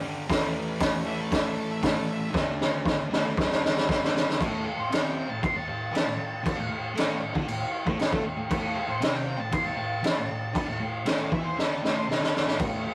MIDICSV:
0, 0, Header, 1, 5, 480
1, 0, Start_track
1, 0, Tempo, 512821
1, 274, Time_signature, 4, 2, 24, 8
1, 12113, End_track
2, 0, Start_track
2, 0, Title_t, "Lead electric guitar"
2, 0, Program_c, 0, 29
2, 1002, Note_on_c, 0, 76, 94
2, 1114, Note_off_c, 0, 76, 0
2, 1130, Note_on_c, 0, 69, 80
2, 1225, Note_on_c, 0, 76, 95
2, 1238, Note_off_c, 0, 69, 0
2, 1345, Note_off_c, 0, 76, 0
2, 1361, Note_on_c, 0, 76, 86
2, 1474, Note_off_c, 0, 76, 0
2, 1474, Note_on_c, 0, 69, 99
2, 1590, Note_off_c, 0, 69, 0
2, 1598, Note_on_c, 0, 76, 94
2, 1704, Note_off_c, 0, 76, 0
2, 1715, Note_on_c, 0, 76, 90
2, 1828, Note_on_c, 0, 69, 87
2, 1830, Note_off_c, 0, 76, 0
2, 1947, Note_off_c, 0, 69, 0
2, 1968, Note_on_c, 0, 76, 98
2, 2056, Note_off_c, 0, 76, 0
2, 2067, Note_on_c, 0, 76, 89
2, 2186, Note_off_c, 0, 76, 0
2, 4351, Note_on_c, 0, 69, 89
2, 4468, Note_off_c, 0, 69, 0
2, 4472, Note_on_c, 0, 72, 70
2, 4705, Note_off_c, 0, 72, 0
2, 4715, Note_on_c, 0, 79, 73
2, 4947, Note_off_c, 0, 79, 0
2, 4961, Note_on_c, 0, 81, 76
2, 5074, Note_off_c, 0, 81, 0
2, 5083, Note_on_c, 0, 84, 89
2, 5203, Note_off_c, 0, 84, 0
2, 5203, Note_on_c, 0, 81, 84
2, 5315, Note_off_c, 0, 81, 0
2, 5328, Note_on_c, 0, 81, 91
2, 6253, Note_off_c, 0, 81, 0
2, 8202, Note_on_c, 0, 69, 84
2, 8316, Note_off_c, 0, 69, 0
2, 8328, Note_on_c, 0, 72, 85
2, 8556, Note_off_c, 0, 72, 0
2, 8557, Note_on_c, 0, 79, 86
2, 8790, Note_off_c, 0, 79, 0
2, 8796, Note_on_c, 0, 81, 86
2, 8913, Note_off_c, 0, 81, 0
2, 8927, Note_on_c, 0, 84, 92
2, 9032, Note_off_c, 0, 84, 0
2, 9032, Note_on_c, 0, 81, 89
2, 9126, Note_off_c, 0, 81, 0
2, 9137, Note_on_c, 0, 81, 97
2, 10078, Note_off_c, 0, 81, 0
2, 10353, Note_on_c, 0, 76, 90
2, 10471, Note_off_c, 0, 76, 0
2, 10480, Note_on_c, 0, 69, 74
2, 10594, Note_off_c, 0, 69, 0
2, 10597, Note_on_c, 0, 76, 84
2, 10710, Note_on_c, 0, 72, 100
2, 10713, Note_off_c, 0, 76, 0
2, 10829, Note_off_c, 0, 72, 0
2, 10830, Note_on_c, 0, 76, 84
2, 10935, Note_on_c, 0, 69, 95
2, 10949, Note_off_c, 0, 76, 0
2, 11061, Note_off_c, 0, 69, 0
2, 11079, Note_on_c, 0, 76, 91
2, 11191, Note_on_c, 0, 72, 82
2, 11194, Note_off_c, 0, 76, 0
2, 11303, Note_off_c, 0, 72, 0
2, 11303, Note_on_c, 0, 69, 101
2, 11774, Note_off_c, 0, 69, 0
2, 12040, Note_on_c, 0, 69, 89
2, 12113, Note_off_c, 0, 69, 0
2, 12113, End_track
3, 0, Start_track
3, 0, Title_t, "Distorted electric guitar"
3, 0, Program_c, 1, 30
3, 14, Note_on_c, 1, 55, 99
3, 35, Note_on_c, 1, 50, 86
3, 51, Note_on_c, 1, 43, 73
3, 250, Note_off_c, 1, 55, 0
3, 255, Note_off_c, 1, 50, 0
3, 259, Note_on_c, 1, 45, 92
3, 268, Note_off_c, 1, 43, 0
3, 273, Note_on_c, 1, 52, 98
3, 291, Note_on_c, 1, 57, 106
3, 963, Note_off_c, 1, 57, 0
3, 972, Note_off_c, 1, 45, 0
3, 974, Note_on_c, 1, 57, 91
3, 976, Note_off_c, 1, 52, 0
3, 988, Note_on_c, 1, 52, 92
3, 1006, Note_on_c, 1, 45, 67
3, 2156, Note_off_c, 1, 45, 0
3, 2160, Note_on_c, 1, 50, 100
3, 2168, Note_off_c, 1, 57, 0
3, 2175, Note_off_c, 1, 52, 0
3, 2179, Note_on_c, 1, 57, 101
3, 2194, Note_on_c, 1, 62, 107
3, 2881, Note_off_c, 1, 50, 0
3, 2889, Note_off_c, 1, 62, 0
3, 2891, Note_off_c, 1, 57, 0
3, 2901, Note_on_c, 1, 62, 80
3, 2918, Note_on_c, 1, 57, 87
3, 2934, Note_on_c, 1, 50, 67
3, 3132, Note_off_c, 1, 62, 0
3, 3135, Note_on_c, 1, 43, 90
3, 3139, Note_off_c, 1, 50, 0
3, 3141, Note_off_c, 1, 57, 0
3, 3150, Note_on_c, 1, 50, 91
3, 3169, Note_on_c, 1, 55, 98
3, 3846, Note_off_c, 1, 55, 0
3, 3849, Note_off_c, 1, 43, 0
3, 3857, Note_off_c, 1, 50, 0
3, 3857, Note_on_c, 1, 55, 90
3, 3877, Note_on_c, 1, 50, 82
3, 3892, Note_on_c, 1, 43, 76
3, 4090, Note_off_c, 1, 55, 0
3, 4100, Note_off_c, 1, 50, 0
3, 4104, Note_on_c, 1, 45, 90
3, 4108, Note_off_c, 1, 43, 0
3, 4115, Note_on_c, 1, 57, 102
3, 4341, Note_off_c, 1, 45, 0
3, 4346, Note_off_c, 1, 57, 0
3, 4468, Note_on_c, 1, 45, 77
3, 4586, Note_off_c, 1, 45, 0
3, 4590, Note_on_c, 1, 48, 90
3, 4600, Note_on_c, 1, 60, 102
3, 4943, Note_off_c, 1, 48, 0
3, 4947, Note_on_c, 1, 45, 64
3, 4950, Note_off_c, 1, 60, 0
3, 5064, Note_off_c, 1, 45, 0
3, 5308, Note_on_c, 1, 45, 70
3, 5503, Note_off_c, 1, 45, 0
3, 5537, Note_on_c, 1, 52, 77
3, 5550, Note_on_c, 1, 64, 93
3, 5658, Note_off_c, 1, 52, 0
3, 5665, Note_off_c, 1, 64, 0
3, 5665, Note_on_c, 1, 45, 67
3, 5768, Note_off_c, 1, 45, 0
3, 5780, Note_on_c, 1, 45, 77
3, 5979, Note_off_c, 1, 45, 0
3, 6017, Note_on_c, 1, 50, 94
3, 6025, Note_on_c, 1, 62, 112
3, 6138, Note_off_c, 1, 50, 0
3, 6143, Note_off_c, 1, 62, 0
3, 6147, Note_on_c, 1, 45, 72
3, 6251, Note_off_c, 1, 45, 0
3, 6262, Note_on_c, 1, 45, 73
3, 6461, Note_off_c, 1, 45, 0
3, 6502, Note_on_c, 1, 45, 85
3, 6508, Note_on_c, 1, 57, 104
3, 6742, Note_off_c, 1, 45, 0
3, 6745, Note_off_c, 1, 57, 0
3, 6752, Note_on_c, 1, 45, 71
3, 6862, Note_off_c, 1, 45, 0
3, 6865, Note_on_c, 1, 50, 91
3, 6876, Note_on_c, 1, 62, 107
3, 6983, Note_off_c, 1, 50, 0
3, 6988, Note_on_c, 1, 45, 71
3, 6989, Note_off_c, 1, 62, 0
3, 7112, Note_off_c, 1, 45, 0
3, 7357, Note_on_c, 1, 45, 90
3, 7368, Note_on_c, 1, 57, 101
3, 7465, Note_off_c, 1, 45, 0
3, 7475, Note_off_c, 1, 57, 0
3, 7476, Note_on_c, 1, 45, 70
3, 7592, Note_on_c, 1, 57, 86
3, 7596, Note_off_c, 1, 45, 0
3, 7600, Note_on_c, 1, 69, 87
3, 7707, Note_off_c, 1, 57, 0
3, 7711, Note_off_c, 1, 69, 0
3, 7718, Note_on_c, 1, 45, 73
3, 7825, Note_off_c, 1, 45, 0
3, 7837, Note_on_c, 1, 45, 72
3, 7944, Note_off_c, 1, 45, 0
3, 7955, Note_on_c, 1, 45, 100
3, 7967, Note_on_c, 1, 57, 112
3, 8189, Note_off_c, 1, 45, 0
3, 8195, Note_off_c, 1, 57, 0
3, 8315, Note_on_c, 1, 45, 77
3, 8426, Note_off_c, 1, 45, 0
3, 8430, Note_on_c, 1, 48, 92
3, 8442, Note_on_c, 1, 60, 105
3, 8778, Note_off_c, 1, 48, 0
3, 8782, Note_on_c, 1, 45, 75
3, 8792, Note_off_c, 1, 60, 0
3, 8896, Note_off_c, 1, 45, 0
3, 9147, Note_on_c, 1, 45, 79
3, 9344, Note_off_c, 1, 45, 0
3, 9388, Note_on_c, 1, 52, 85
3, 9398, Note_on_c, 1, 64, 103
3, 9503, Note_off_c, 1, 52, 0
3, 9507, Note_on_c, 1, 45, 75
3, 9510, Note_off_c, 1, 64, 0
3, 9616, Note_off_c, 1, 45, 0
3, 9627, Note_on_c, 1, 45, 79
3, 9824, Note_off_c, 1, 45, 0
3, 9862, Note_on_c, 1, 50, 95
3, 9871, Note_on_c, 1, 62, 106
3, 9982, Note_off_c, 1, 50, 0
3, 9986, Note_off_c, 1, 62, 0
3, 9989, Note_on_c, 1, 45, 75
3, 10101, Note_off_c, 1, 45, 0
3, 10112, Note_on_c, 1, 45, 78
3, 10306, Note_off_c, 1, 45, 0
3, 10346, Note_on_c, 1, 45, 92
3, 10357, Note_on_c, 1, 57, 93
3, 10584, Note_off_c, 1, 45, 0
3, 10589, Note_off_c, 1, 57, 0
3, 10596, Note_on_c, 1, 52, 99
3, 10605, Note_on_c, 1, 64, 90
3, 10829, Note_off_c, 1, 52, 0
3, 10833, Note_off_c, 1, 64, 0
3, 10834, Note_on_c, 1, 50, 87
3, 10843, Note_on_c, 1, 62, 106
3, 11068, Note_off_c, 1, 50, 0
3, 11072, Note_off_c, 1, 62, 0
3, 11072, Note_on_c, 1, 45, 89
3, 11079, Note_on_c, 1, 57, 97
3, 11306, Note_off_c, 1, 45, 0
3, 11310, Note_off_c, 1, 57, 0
3, 11310, Note_on_c, 1, 48, 86
3, 11319, Note_on_c, 1, 60, 97
3, 11417, Note_off_c, 1, 48, 0
3, 11421, Note_off_c, 1, 60, 0
3, 11421, Note_on_c, 1, 50, 85
3, 11425, Note_on_c, 1, 62, 94
3, 11661, Note_off_c, 1, 50, 0
3, 11663, Note_off_c, 1, 62, 0
3, 11667, Note_on_c, 1, 45, 86
3, 11673, Note_on_c, 1, 57, 93
3, 11774, Note_off_c, 1, 45, 0
3, 11785, Note_on_c, 1, 45, 99
3, 11787, Note_off_c, 1, 57, 0
3, 11796, Note_on_c, 1, 57, 103
3, 12022, Note_off_c, 1, 45, 0
3, 12028, Note_off_c, 1, 57, 0
3, 12113, End_track
4, 0, Start_track
4, 0, Title_t, "Muted distorted electric guitar strokes"
4, 4352, Note_on_c, 9, 29, 57
4, 4446, Note_off_c, 9, 29, 0
4, 5075, Note_on_c, 9, 29, 52
4, 5169, Note_off_c, 9, 29, 0
4, 5192, Note_on_c, 9, 29, 59
4, 5285, Note_off_c, 9, 29, 0
4, 8202, Note_on_c, 9, 29, 63
4, 8296, Note_off_c, 9, 29, 0
4, 8907, Note_on_c, 9, 29, 58
4, 9001, Note_off_c, 9, 29, 0
4, 9029, Note_on_c, 9, 29, 56
4, 9123, Note_off_c, 9, 29, 0
4, 12032, Note_on_c, 9, 29, 60
4, 12113, Note_off_c, 9, 29, 0
4, 12113, End_track
5, 0, Start_track
5, 0, Title_t, "Drums"
5, 277, Note_on_c, 9, 36, 127
5, 279, Note_on_c, 9, 46, 69
5, 291, Note_on_c, 9, 38, 127
5, 370, Note_off_c, 9, 36, 0
5, 372, Note_off_c, 9, 46, 0
5, 385, Note_off_c, 9, 38, 0
5, 747, Note_on_c, 9, 46, 64
5, 754, Note_on_c, 9, 36, 111
5, 759, Note_on_c, 9, 38, 113
5, 840, Note_off_c, 9, 46, 0
5, 848, Note_off_c, 9, 36, 0
5, 853, Note_off_c, 9, 38, 0
5, 1232, Note_on_c, 9, 46, 66
5, 1234, Note_on_c, 9, 36, 122
5, 1244, Note_on_c, 9, 38, 117
5, 1325, Note_off_c, 9, 46, 0
5, 1328, Note_off_c, 9, 36, 0
5, 1337, Note_off_c, 9, 38, 0
5, 1709, Note_on_c, 9, 46, 54
5, 1711, Note_on_c, 9, 36, 98
5, 1721, Note_on_c, 9, 38, 106
5, 1802, Note_off_c, 9, 46, 0
5, 1805, Note_off_c, 9, 36, 0
5, 1814, Note_off_c, 9, 38, 0
5, 2192, Note_on_c, 9, 36, 126
5, 2203, Note_on_c, 9, 38, 77
5, 2286, Note_off_c, 9, 36, 0
5, 2297, Note_off_c, 9, 38, 0
5, 2442, Note_on_c, 9, 38, 76
5, 2536, Note_off_c, 9, 38, 0
5, 2673, Note_on_c, 9, 36, 101
5, 2685, Note_on_c, 9, 38, 75
5, 2766, Note_off_c, 9, 36, 0
5, 2779, Note_off_c, 9, 38, 0
5, 2929, Note_on_c, 9, 38, 86
5, 3023, Note_off_c, 9, 38, 0
5, 3159, Note_on_c, 9, 36, 119
5, 3176, Note_on_c, 9, 38, 87
5, 3252, Note_off_c, 9, 36, 0
5, 3270, Note_off_c, 9, 38, 0
5, 3294, Note_on_c, 9, 38, 89
5, 3388, Note_off_c, 9, 38, 0
5, 3419, Note_on_c, 9, 38, 109
5, 3512, Note_off_c, 9, 38, 0
5, 3530, Note_on_c, 9, 38, 87
5, 3624, Note_off_c, 9, 38, 0
5, 3641, Note_on_c, 9, 36, 107
5, 3652, Note_on_c, 9, 38, 86
5, 3734, Note_off_c, 9, 36, 0
5, 3745, Note_off_c, 9, 38, 0
5, 3782, Note_on_c, 9, 38, 88
5, 3876, Note_off_c, 9, 38, 0
5, 3899, Note_on_c, 9, 38, 107
5, 3993, Note_off_c, 9, 38, 0
5, 4021, Note_on_c, 9, 38, 94
5, 4115, Note_off_c, 9, 38, 0
5, 4124, Note_on_c, 9, 36, 113
5, 4135, Note_on_c, 9, 49, 66
5, 4218, Note_off_c, 9, 36, 0
5, 4229, Note_off_c, 9, 49, 0
5, 4606, Note_on_c, 9, 49, 59
5, 4619, Note_on_c, 9, 38, 102
5, 4700, Note_off_c, 9, 49, 0
5, 4712, Note_off_c, 9, 38, 0
5, 5083, Note_on_c, 9, 36, 112
5, 5087, Note_on_c, 9, 49, 57
5, 5177, Note_off_c, 9, 36, 0
5, 5181, Note_off_c, 9, 49, 0
5, 5567, Note_on_c, 9, 49, 50
5, 5579, Note_on_c, 9, 38, 94
5, 5661, Note_off_c, 9, 49, 0
5, 5673, Note_off_c, 9, 38, 0
5, 6044, Note_on_c, 9, 36, 115
5, 6047, Note_on_c, 9, 49, 67
5, 6138, Note_off_c, 9, 36, 0
5, 6141, Note_off_c, 9, 49, 0
5, 6526, Note_on_c, 9, 49, 61
5, 6539, Note_on_c, 9, 38, 109
5, 6620, Note_off_c, 9, 49, 0
5, 6632, Note_off_c, 9, 38, 0
5, 6883, Note_on_c, 9, 36, 100
5, 6976, Note_off_c, 9, 36, 0
5, 7004, Note_on_c, 9, 49, 60
5, 7098, Note_off_c, 9, 49, 0
5, 7364, Note_on_c, 9, 36, 107
5, 7457, Note_off_c, 9, 36, 0
5, 7482, Note_on_c, 9, 49, 57
5, 7495, Note_on_c, 9, 38, 95
5, 7576, Note_off_c, 9, 49, 0
5, 7588, Note_off_c, 9, 38, 0
5, 7605, Note_on_c, 9, 36, 109
5, 7699, Note_off_c, 9, 36, 0
5, 7963, Note_on_c, 9, 36, 120
5, 7963, Note_on_c, 9, 49, 70
5, 8056, Note_off_c, 9, 36, 0
5, 8056, Note_off_c, 9, 49, 0
5, 8440, Note_on_c, 9, 49, 61
5, 8452, Note_on_c, 9, 38, 114
5, 8534, Note_off_c, 9, 49, 0
5, 8546, Note_off_c, 9, 38, 0
5, 8913, Note_on_c, 9, 49, 58
5, 8917, Note_on_c, 9, 36, 103
5, 9006, Note_off_c, 9, 49, 0
5, 9010, Note_off_c, 9, 36, 0
5, 9396, Note_on_c, 9, 49, 45
5, 9408, Note_on_c, 9, 38, 94
5, 9489, Note_off_c, 9, 49, 0
5, 9501, Note_off_c, 9, 38, 0
5, 9877, Note_on_c, 9, 36, 118
5, 9882, Note_on_c, 9, 49, 63
5, 9970, Note_off_c, 9, 36, 0
5, 9975, Note_off_c, 9, 49, 0
5, 10350, Note_on_c, 9, 49, 55
5, 10362, Note_on_c, 9, 38, 113
5, 10444, Note_off_c, 9, 49, 0
5, 10456, Note_off_c, 9, 38, 0
5, 10595, Note_on_c, 9, 36, 99
5, 10689, Note_off_c, 9, 36, 0
5, 10844, Note_on_c, 9, 38, 65
5, 10938, Note_off_c, 9, 38, 0
5, 11089, Note_on_c, 9, 38, 78
5, 11182, Note_off_c, 9, 38, 0
5, 11331, Note_on_c, 9, 38, 68
5, 11424, Note_off_c, 9, 38, 0
5, 11449, Note_on_c, 9, 38, 80
5, 11543, Note_off_c, 9, 38, 0
5, 11571, Note_on_c, 9, 38, 92
5, 11664, Note_off_c, 9, 38, 0
5, 11676, Note_on_c, 9, 38, 88
5, 11770, Note_off_c, 9, 38, 0
5, 11787, Note_on_c, 9, 49, 69
5, 11791, Note_on_c, 9, 36, 116
5, 11880, Note_off_c, 9, 49, 0
5, 11884, Note_off_c, 9, 36, 0
5, 12113, End_track
0, 0, End_of_file